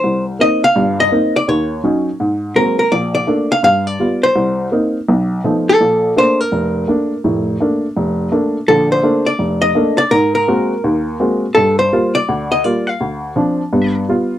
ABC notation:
X:1
M:4/4
L:1/8
Q:"Swing" 1/4=166
K:Bb
V:1 name="Hollow-body jazz guitar"
c z e f2 e2 d | _d2 z4 B B | d d2 f f d2 c- | c2 z4 z A- |
A2 c B4- B- | B6 z2 | A c2 d2 e2 d | B B6 z |
A c2 d2 e d f- | f4- f z3 |]
V:2 name="Upright piano"
C,,2 [B,CE] z [G,,,G,,]2 [B,CE] z | E,,2 [_G,_DE] z _A,,2 [G,_A,B,C] z | B,,,2 [A,B,D] z G,,2 [G,=B,F] z | C,,2 [B,CE] z =B,,,2 [^E,A,=B,^D] z |
B,,,2 [A,B,D] z F,,,2 [A,B,D] z | [F,,,A,,]2 [A,B,D] z F,,,2 [A,B,D] z | [B,,,D,]2 [A,B,D] z F,,,2 [A,B,D] z | _A,,2 [_A,B,C_G] z E,,2 [A,B,CG] z |
G,,2 [G,B,F] z D,,2 [G,B,F] z | D,,2 [F,CD] z [G,,=B,]2 [G,B,F] z |]